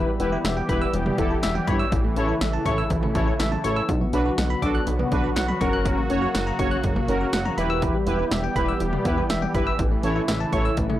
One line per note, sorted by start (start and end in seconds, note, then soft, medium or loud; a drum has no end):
0.00 3.85 E3 medium
0.00 1.90 G3 medium
0.00 1.90 B3 medium
0.00 0.10 E4 medium
0.00 0.10 G4 medium
0.00 1.90 G4 loud
0.00 0.10 B4 loud
0.08 0.19 G3 medium
0.20 0.37 E1 loud
0.20 0.31 B3 medium
0.20 0.38 E4 medium
0.20 0.38 G4 medium
0.20 0.38 B4 loud
0.20 closed hi-hat medium
0.32 0.44 E4 loud
0.45 0.62 E1 loud
0.45 0.56 E5 medium
0.45 snare loud
0.45 closed hi-hat medium
0.57 0.68 G5 medium
0.69 0.86 E1 loud
0.69 0.87 E4 medium
0.69 0.87 G4 medium
0.69 0.87 B4 loud
0.69 0.81 B5 loud
0.69 kick medium
0.69 closed hi-hat medium
0.82 0.93 E6 medium
0.94 1.11 E1 loud
0.94 1.05 E3 medium
0.94 closed hi-hat medium
1.06 1.17 G3 medium
1.06 mid tom loud
1.18 1.36 E1 loud
1.18 1.30 B3 medium
1.18 1.37 E4 medium
1.18 1.36 G4 medium
1.18 1.36 A4 loud
1.18 kick loud
1.18 closed hi-hat medium
1.30 1.42 E4 medium
1.43 1.60 E1 loud
1.43 1.54 E5 loud
1.43 snare loud
1.43 closed hi-hat medium
1.55 1.67 G5 medium
1.55 mid tom medium
1.67 1.85 G1 loud
1.67 1.86 E4 medium
1.67 1.86 G4 medium
1.67 1.86 C#5 loud
1.67 1.79 B5 medium
1.67 kick loud
1.67 closed hi-hat medium
1.79 1.91 E6 loud
1.92 2.09 A1 loud
1.92 3.87 C#3 medium
1.92 2.03 E3 medium
1.92 3.87 A3 medium
1.92 3.87 E4 medium
1.92 kick loud
1.92 closed hi-hat medium
2.04 2.16 A3 medium
2.16 2.34 A1 loud
2.16 2.28 C#4 medium
2.16 2.35 E4 medium
2.16 2.35 A4 medium
2.16 2.35 C#5 loud
2.16 closed hi-hat medium
2.29 2.40 E4 loud
2.41 2.58 A1 loud
2.41 2.53 E5 medium
2.41 snare loud
2.41 closed hi-hat medium
2.53 2.65 A5 medium
2.66 2.83 A1 loud
2.66 2.84 E4 medium
2.66 2.84 A4 medium
2.66 2.84 C#5 loud
2.66 2.77 C#6 loud
2.66 kick medium
2.66 closed hi-hat medium
2.78 2.90 E6 medium
2.90 3.08 A1 loud
2.90 3.02 E3 medium
2.90 kick loud
2.90 closed hi-hat medium
3.03 3.14 A3 medium
3.03 mid tom medium
3.15 3.32 A1 loud
3.15 3.27 C#4 medium
3.15 3.33 E4 medium
3.15 3.33 A4 medium
3.15 3.33 C#5 loud
3.15 kick loud
3.15 closed hi-hat medium
3.15 cowbell medium
3.27 3.39 E4 medium
3.40 3.57 A1 loud
3.40 3.51 E5 loud
3.40 snare loud
3.40 closed hi-hat medium
3.52 3.63 A5 medium
3.52 mid tom medium
3.64 3.81 A1 medium
3.64 3.82 E4 medium
3.64 3.82 A4 medium
3.64 3.82 C#5 loud
3.64 3.76 C#6 medium
3.64 closed hi-hat medium
3.76 3.88 E6 loud
3.89 4.06 B1 loud
3.89 5.59 D3 medium
3.89 4.00 F#3 medium
3.89 7.54 F#3 medium
3.89 5.59 B3 medium
3.89 7.54 F#4 loud
3.89 kick loud
3.89 closed hi-hat medium
4.01 4.13 B3 medium
4.13 4.31 B1 loud
4.13 4.32 D4 medium
4.13 4.25 D4 medium
4.13 4.32 F#4 medium
4.13 4.32 B4 loud
4.13 closed hi-hat medium
4.26 4.37 F#4 loud
4.38 4.55 B1 loud
4.38 4.49 F#5 medium
4.38 snare loud
4.38 closed hi-hat medium
4.50 4.62 B5 medium
4.62 4.80 B1 loud
4.62 4.81 D4 medium
4.62 4.81 F#4 medium
4.62 4.81 A4 loud
4.62 4.74 D6 loud
4.62 kick medium
4.62 closed hi-hat medium
4.75 4.86 F#6 medium
4.87 5.04 B1 loud
4.87 4.99 F#3 medium
4.87 closed hi-hat medium
4.99 5.11 B3 medium
4.99 mid tom medium
5.12 5.29 B1 loud
5.12 5.23 D4 medium
5.12 5.30 D4 medium
5.12 5.30 F#4 medium
5.12 5.30 B4 loud
5.12 kick loud
5.12 closed hi-hat medium
5.24 5.35 F#4 medium
5.36 5.54 B1 loud
5.36 5.48 F#5 loud
5.36 snare loud
5.36 closed hi-hat medium
5.48 5.60 B5 medium
5.48 mid tom medium
5.61 5.95 F#1 loud
5.61 7.56 C#3 medium
5.61 7.56 A#3 medium
5.61 6.00 C#4 medium
5.61 6.00 F#4 medium
5.61 6.00 A#4 loud
5.61 5.72 C#6 medium
5.61 kick loud
5.61 closed hi-hat medium
5.73 5.85 F#6 loud
5.85 5.97 F#3 medium
5.85 kick loud
5.85 closed hi-hat medium
5.98 6.09 A#3 medium
6.10 6.27 F#1 medium
6.10 6.21 C#4 medium
6.10 6.28 C#4 medium
6.10 6.28 F#4 medium
6.10 6.28 C#5 loud
6.10 closed hi-hat medium
6.22 6.34 F#4 loud
6.35 6.52 F#1 loud
6.35 6.46 F#5 medium
6.35 snare loud
6.35 closed hi-hat medium
6.47 6.58 A#5 medium
6.59 6.76 F#1 loud
6.59 6.78 C#4 medium
6.59 6.78 F#4 medium
6.59 6.78 C#5 loud
6.59 6.71 C#6 loud
6.59 kick medium
6.59 closed hi-hat medium
6.71 6.83 F#6 medium
6.84 7.01 F#1 loud
6.84 6.95 F#3 medium
6.84 kick loud
6.84 closed hi-hat medium
6.96 7.08 A#3 medium
6.96 mid tom loud
7.08 7.26 F#1 loud
7.08 7.20 C#4 medium
7.08 7.27 C#4 medium
7.08 7.27 F#4 medium
7.08 7.27 A#4 loud
7.08 closed hi-hat medium
7.21 7.32 F#4 medium
7.33 7.50 F#1 loud
7.33 7.44 F#5 loud
7.33 snare loud
7.33 closed hi-hat medium
7.45 7.57 A#5 medium
7.45 mid tom medium
7.58 7.92 E1 loud
7.58 11.00 E3 medium
7.58 9.77 G3 medium
7.58 9.77 B3 medium
7.58 7.97 E4 medium
7.58 7.97 G4 medium
7.58 9.77 G4 loud
7.58 7.97 B4 loud
7.58 7.69 B5 medium
7.58 closed hi-hat medium
7.70 7.81 E6 loud
7.82 7.94 E3 medium
7.82 kick loud
7.82 closed hi-hat medium
7.94 8.06 G3 medium
8.07 8.24 E1 loud
8.07 8.18 B3 medium
8.07 8.25 E4 medium
8.07 8.25 G4 medium
8.07 8.25 B4 loud
8.07 closed hi-hat medium
8.19 8.31 E4 loud
8.31 8.49 E1 loud
8.31 8.43 E5 medium
8.31 snare loud
8.31 closed hi-hat medium
8.44 8.55 G5 medium
8.56 8.73 E1 loud
8.56 8.74 E4 medium
8.56 8.74 G4 medium
8.56 8.74 B4 loud
8.56 8.67 B5 loud
8.56 kick medium
8.56 closed hi-hat medium
8.68 8.80 E6 medium
8.80 8.98 E1 loud
8.80 8.92 E3 medium
8.80 closed hi-hat medium
8.93 9.04 G3 medium
8.93 mid tom loud
9.05 9.23 E1 loud
9.05 9.17 B3 medium
9.05 9.23 E4 medium
9.05 9.23 G4 medium
9.05 9.23 B4 loud
9.05 kick loud
9.05 closed hi-hat medium
9.18 9.29 E4 medium
9.30 9.47 E1 loud
9.30 9.41 E5 loud
9.30 snare loud
9.30 closed hi-hat medium
9.42 9.54 G5 medium
9.42 mid tom medium
9.54 9.72 G1 loud
9.54 9.73 E4 medium
9.54 9.73 G4 medium
9.54 9.73 B4 loud
9.54 9.66 B5 medium
9.54 kick loud
9.54 closed hi-hat medium
9.67 9.78 E6 loud
9.79 9.96 A1 loud
9.79 11.00 C#3 medium
9.79 9.90 E3 medium
9.79 11.00 A3 medium
9.79 11.00 E4 loud
9.79 kick loud
9.79 closed hi-hat medium
9.91 10.03 A3 medium
10.03 10.21 A1 loud
10.03 10.15 C#4 medium
10.03 10.22 E4 medium
10.03 10.22 A4 medium
10.03 10.22 C#5 loud
10.03 closed hi-hat medium
10.16 10.27 E4 loud
10.28 10.45 A1 loud
10.28 10.40 E5 medium
10.28 snare loud
10.28 closed hi-hat medium
10.40 10.52 A5 medium
10.52 10.70 A1 loud
10.52 10.71 E4 medium
10.52 10.71 A4 medium
10.52 10.71 C#5 loud
10.52 10.64 C#6 loud
10.52 kick medium
10.52 closed hi-hat medium
10.65 10.77 E6 medium
10.77 10.95 A1 loud
10.77 10.89 E3 medium
10.77 kick loud
10.77 closed hi-hat medium
10.90 11.00 A3 medium
10.90 mid tom medium